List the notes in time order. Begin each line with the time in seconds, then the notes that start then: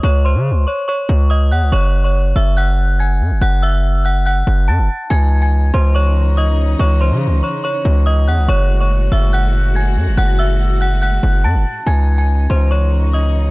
0.03 C#2 C#5 C#6
0.25 C5 C6
0.35 C#3
0.51 C#2
0.67 C#5 C#6
0.88 C#5 C#6
1.09 C#2
1.30 D#5 D#6
1.51 E2 F#5 F#6
1.62 C#2
1.72 F#1 C#5 C#6
2.04 C#5 C#6
2.36 F#1 E5 E6
2.57 F#5 F#6
2.99 G#5 G#6
3.20 F#2
3.31 F#1
3.41 F#1 F#5 F#6
3.62 E5 E6
4.05 F#5 F#6
4.26 F#5 F#6
4.47 F#1
4.68 F#2 A5 A6
4.79 F#1
5.10 C#2 C#3 E3 D#4 G#5 G#6
5.42 G#5 G#6
5.74 C#2 C5 C6
5.95 C#5 C#6
6.37 D#5 D#6
6.79 C#2 C#5 C#6
7.01 C5 C6
7.11 C#3
7.27 C#2
7.43 C#5 C#6
7.64 C#5 C#6
7.85 C#2
8.06 D#5 D#6
8.27 E2 F#5 F#6
8.38 C#2
8.48 F#1 A2 G#3 F#4 C#5 C#6
8.80 C#5 C#6
9.12 F#1 E5 E6
9.33 F#5 F#6
9.75 G#5 G#6
9.96 F#2
10.07 F#1
10.17 F#1 F#5 F#6
10.39 E5 E6
10.81 F#5 F#6
11.02 F#5 F#6
11.23 F#1
11.44 F#2 A5 A6
11.55 F#1
11.86 C#2 C#3 E3 D#4 G#5 G#6
12.18 G#5 G#6
12.50 C#2 C5 C6
12.71 C#5 C#6
13.13 D#5 D#6